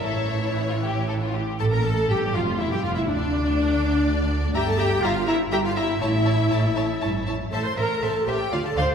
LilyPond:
<<
  \new Staff \with { instrumentName = "Violin section" } { \time 3/4 \key a \phrygian \tempo 4 = 120 cis''2~ cis''8 r8 | a''16 bes''16 a''8 g''8 f''8 e''16 g''16 f''16 e''16 | d''2. | g''16 a''16 g''8 f''8 e''8 g''16 f''16 e''8 |
e''2~ e''8 r8 | a''16 c'''16 bes''8 a''8 g''8 f''16 a''16 c'''8 | }
  \new Staff \with { instrumentName = "Violin section" } { \time 3/4 \key a \phrygian <a' e''>4 e'16 f'16 g'8 a'16 f'16 g'8 | a'16 bes'16 a'8 g'8 f'8 e'16 g'16 f'16 e'16 | d'2. | <e'' bes''>8 <e'' bes''>8 <e'' bes''>8 <e'' bes''>8 <e'' bes''>8 <e'' bes''>8 |
<cis'' a''>8 <cis'' a''>8 <cis'' a''>8 <cis'' a''>8 <cis'' a''>8 <cis'' a''>8 | <c'' e''>8 <c'' e''>8 <c'' e''>8 <c'' e''>8 <d'' f''>8 <d'' f''>8 | }
  \new Staff \with { instrumentName = "Viola section" } { \time 3/4 \key a \phrygian <e e'>2~ <e e'>8 r8 | a'16 bes'16 a'8 g'8 f'8 e'16 g'16 f'16 e'16 | d'2. | g'16 a'16 g'8 f'8 e'8 g'16 f'16 e'8 |
e'2~ e'8 r8 | a'16 c''16 bes'8 a'8 g'8 f'16 a'16 c''8 | }
  \new Staff \with { instrumentName = "Cello section" } { \clef bass \time 3/4 \key a \phrygian a,2~ a,8 r8 | a,16 bes,16 a,8 g,8 f,8 e,16 g,16 f,16 e,16 | d,2. | g,4 g,4 g,4 |
a,4 a,16 bes,16 a,8 g,8 f,8 | a,8 a,8 a,8 a,8 d8 d8 | }
  \new Staff \with { instrumentName = "Double bass section" } { \clef bass \time 3/4 \key a \phrygian a,,2~ a,,8 r8 | a,,16 r16 a,,8 g,,8 f,,8 e,,16 r16 f,,16 r16 | d,2. | g,,4 g,,4 g,,4 |
a,,4 a,,4 a,,4 | a,,8 a,,8 a,,8 a,,8 d,8 d,8 | }
>>